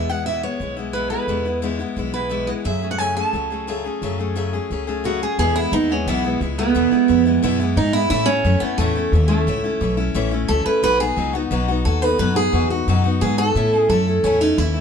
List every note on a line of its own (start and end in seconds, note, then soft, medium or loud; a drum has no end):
0.00 0.45 E2 medium
0.09 0.26 E3 soft
0.09 0.26 G#3 soft
0.09 0.26 B3 soft
0.09 0.26 E4 medium
0.09 0.25 F#5 loud
0.26 0.43 E2 medium
0.26 0.43 B2 medium
0.26 0.43 E3 medium
0.26 0.44 G#3 medium
0.26 0.42 B3 medium
0.26 0.42 E4 medium
0.26 0.41 E5 medium
0.43 0.58 E3 soft
0.43 0.60 G#3 soft
0.43 0.60 B3 soft
0.43 0.60 E4 soft
0.43 0.75 C#5 medium
0.59 1.14 B1 medium
0.59 0.76 E3 soft
0.59 0.77 G#3 medium
0.59 0.76 B3 medium
0.59 0.75 E4 medium
0.77 0.94 E3 soft
0.77 0.94 G#3 soft
0.77 0.94 B3 soft
0.77 0.93 E4 soft
0.93 1.11 E2 medium
0.93 1.11 B2 medium
0.93 1.11 E3 medium
0.93 1.11 G#3 medium
0.93 1.10 B3 medium
0.93 1.09 E4 medium
0.93 1.09 B4 medium
1.10 1.27 E3 soft
1.10 1.28 G#3 soft
1.10 1.28 B3 soft
1.10 1.28 E4 soft
1.10 1.58 B4 medium
1.27 1.82 E2 medium
1.27 1.45 E2 medium
1.27 1.45 B2 medium
1.27 1.45 E3 medium
1.27 1.45 G#3 medium
1.27 1.45 B3 medium
1.27 1.44 E4 medium
1.45 1.61 E3 soft
1.45 1.62 G#3 soft
1.45 1.62 B3 soft
1.45 1.62 E4 soft
1.62 1.79 E2 medium
1.62 1.79 B2 medium
1.62 1.79 E3 medium
1.62 1.79 G#3 medium
1.62 1.79 B3 medium
1.62 1.78 E4 medium
1.79 1.95 E3 soft
1.79 1.96 G#3 soft
1.79 1.97 B3 medium
1.79 1.96 E4 medium
1.96 2.51 B1 medium
1.96 2.13 E3 medium
1.96 2.14 G#3 medium
1.96 2.13 B3 medium
1.96 2.12 E4 medium
2.13 2.29 E3 soft
2.13 2.30 G#3 soft
2.13 2.30 B3 soft
2.13 2.30 E4 soft
2.13 2.49 B4 medium
2.29 2.47 E2 medium
2.29 2.47 B2 medium
2.29 2.48 E3 medium
2.29 2.48 G#3 medium
2.29 2.47 B3 medium
2.29 2.46 E4 medium
2.47 2.65 E3 soft
2.47 2.65 G#3 soft
2.47 2.65 B3 soft
2.47 2.65 E4 soft
2.47 2.52 D#5 medium
2.65 2.82 F#2 medium
2.65 3.19 F#2 medium
2.65 2.82 C#3 medium
2.65 2.82 F#3 medium
2.65 2.82 A3 medium
2.65 2.81 C#4 medium
2.65 2.80 G#4 medium
2.65 2.91 E5 medium
2.82 2.99 F#3 soft
2.82 2.99 A3 soft
2.82 2.99 C#4 soft
2.82 2.99 G#4 soft
2.91 2.98 F#5 medium
2.98 3.16 F#2 medium
2.98 3.16 C#3 medium
2.98 3.16 F#3 medium
2.98 3.16 A3 medium
2.98 3.16 C#4 medium
2.98 3.14 G#4 medium
2.98 3.16 G#5 medium
3.16 3.32 F#3 soft
3.16 3.33 A3 soft
3.16 3.34 C#4 medium
3.16 3.33 G#4 soft
3.16 5.00 A5 medium
3.33 3.88 C#2 medium
3.33 3.50 F#3 medium
3.33 3.50 A3 medium
3.33 3.51 C#4 medium
3.33 3.49 G#4 medium
3.50 3.67 F#3 soft
3.50 3.68 A3 soft
3.50 3.68 C#4 medium
3.50 3.67 G#4 medium
3.67 3.84 F#2 medium
3.67 3.85 C#3 medium
3.67 3.85 F#3 medium
3.67 3.85 A3 medium
3.67 3.84 C#4 medium
3.67 3.83 G#4 medium
3.84 4.02 F#3 soft
3.84 4.02 A3 soft
3.84 4.02 C#4 soft
3.84 4.01 G#4 soft
4.02 4.56 F#2 medium
4.02 4.19 F#2 medium
4.02 4.19 C#3 medium
4.02 4.19 F#3 medium
4.02 4.19 A3 medium
4.02 4.18 C#4 medium
4.02 4.18 G#4 medium
4.19 4.35 F#3 soft
4.19 4.35 A3 medium
4.19 4.36 C#4 soft
4.19 4.36 G#4 soft
4.35 4.53 F#2 medium
4.35 4.53 C#3 medium
4.35 4.53 F#3 medium
4.35 4.53 A3 medium
4.35 4.53 C#4 medium
4.35 4.52 G#4 medium
4.53 4.69 F#3 soft
4.53 4.70 A3 medium
4.53 4.70 C#4 medium
4.53 4.70 G#4 medium
4.70 5.25 C#2 medium
4.70 4.87 F#3 medium
4.70 4.88 A3 medium
4.70 4.87 C#4 medium
4.70 4.86 G#4 medium
4.87 5.03 F#3 soft
4.87 5.04 A3 medium
4.87 5.04 C#4 medium
4.87 5.04 G#4 medium
5.04 5.21 F#2 medium
5.04 5.21 C#3 medium
5.04 5.21 F#3 medium
5.04 5.22 A3 medium
5.04 5.21 C#4 medium
5.04 5.22 F#4 medium
5.04 5.21 G#4 medium
5.22 5.39 F#3 soft
5.22 5.39 A3 soft
5.22 5.39 C#4 soft
5.22 5.38 G#4 soft
5.22 5.38 G#4 medium
5.38 5.71 E2 medium
5.38 5.55 E2 medium
5.38 5.55 B2 medium
5.38 5.56 E3 medium
5.38 5.56 G#3 medium
5.38 5.55 B3 medium
5.38 5.55 E4 loud
5.38 5.56 G#4 loud
5.56 5.70 E3 soft
5.56 5.72 G#3 medium
5.56 5.72 B3 soft
5.56 5.73 E4 loud
5.56 5.72 E4 medium
5.72 6.05 D#2 loud
5.72 5.89 E3 medium
5.72 5.90 G#3 medium
5.72 5.89 B3 medium
5.72 5.92 D#4 loud
5.72 5.88 E4 medium
5.89 6.07 E3 soft
5.89 6.07 G#3 soft
5.89 6.07 B3 medium
5.89 6.08 C#4 medium
5.89 6.06 E4 medium
6.06 6.39 B1 medium
6.06 6.24 E2 medium
6.06 6.24 B2 loud
6.06 6.24 E3 loud
6.06 6.24 G#3 medium
6.06 6.39 B3 medium
6.06 6.24 B3 loud
6.06 6.23 E4 loud
6.24 6.40 E3 soft
6.24 6.41 G#3 medium
6.24 6.41 B3 medium
6.24 6.41 E4 medium
6.41 6.74 C#2 loud
6.41 6.58 E3 medium
6.41 6.58 G#3 medium
6.41 6.58 B3 medium
6.41 6.57 E4 medium
6.58 6.74 E3 soft
6.58 6.75 G#3 soft
6.58 7.22 B3 medium
6.58 6.75 B3 medium
6.58 6.75 E4 medium
6.75 6.92 E2 medium
6.75 6.91 E2 medium
6.75 6.92 B2 medium
6.75 6.92 E3 medium
6.75 6.92 G#3 medium
6.75 6.91 B3 medium
6.75 6.90 E4 medium
6.91 7.07 E3 soft
6.91 7.08 G#3 medium
6.91 7.09 B3 medium
6.91 7.08 E4 medium
6.91 muted upright bass stroke soft
7.08 7.42 F2 loud
7.08 7.25 E3 medium
7.08 7.26 G#3 medium
7.08 7.25 B3 medium
7.08 7.24 E4 medium
7.25 7.42 E3 medium
7.25 7.42 G#3 medium
7.25 7.43 B3 medium
7.25 7.43 E4 medium
7.43 7.60 E2 medium
7.43 7.76 F#2 medium
7.43 7.60 B2 medium
7.43 7.60 E3 medium
7.43 7.60 G#3 loud
7.43 7.60 B3 loud
7.43 7.59 E4 loud
7.60 7.76 E3 medium
7.60 7.76 G#3 medium
7.60 7.77 B3 medium
7.60 7.77 E4 medium
7.77 8.10 G#2 loud
7.77 7.94 E3 medium
7.77 7.94 G#3 medium
7.77 7.93 B3 medium
7.77 7.93 D#4 loud
7.77 7.92 E4 medium
7.93 8.09 E3 medium
7.93 8.10 G#3 soft
7.93 8.11 B3 medium
7.93 8.09 E4 loud
7.93 8.10 E4 medium
8.10 8.27 A2 medium
8.10 8.44 A2 medium
8.10 8.28 E3 medium
8.10 8.28 A3 medium
8.10 8.28 C#4 medium
8.10 8.26 E4 loud
8.26 8.62 C#4 loud
8.26 8.45 C#4 soft
8.26 8.44 E4 medium
8.30 8.44 A3 soft
8.44 8.60 F#2 loud
8.44 8.62 E3 medium
8.44 8.62 A3 medium
8.44 8.62 C#4 medium
8.44 8.61 E4 medium
8.60 8.77 B3 loud
8.60 8.79 C#4 medium
8.60 8.79 E4 medium
8.60 muted upright bass stroke soft
8.64 8.79 A3 soft
8.78 9.11 E2 medium
8.78 8.96 A2 medium
8.78 8.96 E3 medium
8.78 9.12 A3 medium
8.78 8.96 A3 medium
8.78 8.96 C#4 medium
8.78 8.94 E4 loud
8.95 9.13 A3 soft
8.95 9.13 C#4 medium
8.95 9.13 E4 medium
9.12 9.45 D#2 loud
9.12 9.30 E3 medium
9.12 9.31 A3 medium
9.12 9.30 C#4 medium
9.12 9.29 E4 medium
9.28 9.93 A3 medium
9.28 9.47 C#4 medium
9.28 9.47 E4 medium
9.32 9.47 A3 soft
9.47 9.80 C#2 medium
9.47 9.64 A2 medium
9.47 9.64 E3 medium
9.47 9.64 A3 medium
9.47 9.64 C#4 medium
9.47 9.63 E4 medium
9.64 9.81 A3 soft
9.64 9.82 C#4 medium
9.64 9.81 E4 medium
9.81 10.14 B1 medium
9.81 9.98 E3 medium
9.81 9.98 A3 medium
9.81 9.97 C#4 medium
9.81 9.96 E4 medium
9.97 10.14 A3 medium
9.97 10.15 C#4 medium
9.97 10.14 E4 medium
10.14 10.48 A1 medium
10.14 10.32 A2 medium
10.14 10.32 E3 medium
10.14 10.32 A3 loud
10.14 10.32 C#4 loud
10.14 10.30 E4 loud
10.31 10.48 A3 medium
10.31 10.49 C#4 medium
10.31 10.49 E4 medium
10.48 10.65 C#2 loud
10.48 10.66 E3 medium
10.48 10.66 A3 medium
10.48 10.67 C#4 medium
10.48 10.65 E4 medium
10.48 10.65 A4 loud
10.66 10.83 A3 soft
10.66 10.84 C#4 medium
10.66 10.83 E4 soft
10.66 10.82 B4 medium
10.66 muted upright bass stroke soft
10.83 11.16 B1 medium
10.83 11.00 B2 medium
10.83 11.00 F#3 medium
10.83 11.00 B3 medium
10.83 11.00 D#4 medium
10.83 10.99 F#4 medium
10.83 11.00 B4 loud
11.00 11.16 B3 medium
11.00 11.17 D#4 soft
11.00 11.17 F#4 medium
11.00 11.32 G#4 loud
11.16 11.50 C#2 medium
11.16 11.34 F#3 medium
11.16 11.34 B3 medium
11.16 11.34 D#4 medium
11.16 11.32 F#4 medium
11.33 11.50 B3 soft
11.33 11.51 D#4 medium
11.33 11.51 F#4 medium
11.33 11.40 F#4 medium
11.51 11.84 B1 loud
11.51 11.68 B2 medium
11.51 11.68 F#3 medium
11.51 11.68 B3 medium
11.51 11.68 D#4 medium
11.51 11.67 F#4 medium
11.68 11.84 B3 medium
11.68 11.85 D#4 medium
11.68 11.85 F#4 medium
11.85 12.18 D#2 loud
11.85 12.02 F#3 medium
11.85 12.02 B3 medium
11.85 12.01 D#4 medium
11.85 12.00 F#4 medium
11.85 12.02 A4 loud
12.01 12.19 B3 soft
12.01 12.19 D#4 medium
12.01 12.19 F#4 medium
12.01 12.18 B4 loud
12.19 12.52 F#2 medium
12.19 12.36 B2 medium
12.19 12.36 F#3 medium
12.19 12.36 B3 medium
12.19 12.35 D#4 medium
12.19 12.34 F#4 medium
12.19 12.35 B4 loud
12.35 12.52 B3 soft
12.35 12.53 D#4 medium
12.35 12.53 F#4 medium
12.35 12.70 G#4 loud
12.52 12.86 E2 loud
12.52 12.70 F#3 medium
12.52 12.70 B3 medium
12.52 12.70 D#4 medium
12.52 12.69 F#4 medium
12.70 12.88 B3 medium
12.70 12.88 D#4 medium
12.70 12.87 F#4 medium
12.70 12.86 F#4 medium
12.87 13.20 F#2 medium
12.87 13.04 B2 medium
12.87 13.05 F#3 medium
12.87 13.05 B3 medium
12.87 13.04 D#4 medium
12.87 13.03 F#4 medium
13.04 13.22 B3 medium
13.04 13.22 D#4 medium
13.04 13.21 F#4 medium
13.21 13.54 G#2 loud
13.21 13.39 F#3 medium
13.21 13.39 B3 medium
13.21 13.39 D#4 medium
13.21 13.37 F#4 medium
13.21 13.38 G#4 loud
13.38 13.56 B3 soft
13.38 13.56 D#4 medium
13.38 13.55 F#4 medium
13.38 13.77 A4 loud
13.55 13.88 A2 medium
13.55 13.72 A2 medium
13.55 13.73 E3 medium
13.55 13.73 A3 medium
13.55 13.73 C#4 medium
13.55 13.72 E4 loud
13.73 13.90 A3 soft
13.73 13.90 C#4 soft
13.73 13.90 E4 medium
13.77 13.88 G#4 loud
13.89 14.22 F#2 loud
13.89 14.06 E3 medium
13.89 14.07 A3 medium
13.89 14.07 C#4 medium
13.89 14.06 E4 medium
13.89 14.25 A4 loud
14.07 14.24 A3 soft
14.07 14.24 C#4 medium
14.07 14.24 E4 medium
14.23 14.56 E2 medium
14.23 14.41 A2 medium
14.23 14.41 E3 medium
14.23 14.41 A3 loud
14.23 14.41 C#4 medium
14.23 14.40 C#4 medium
14.23 14.39 E4 loud
14.40 14.58 A3 soft
14.40 14.58 C#4 medium
14.40 14.58 D#4 medium
14.40 14.57 E4 medium
14.58 14.81 D#2 loud
14.58 14.75 E3 medium
14.58 14.75 A3 medium
14.58 14.74 C#4 medium
14.58 14.81 E4 loud
14.58 14.73 E4 medium
14.74 14.81 A3 soft
14.74 14.81 C#4 soft
14.74 14.81 E4 medium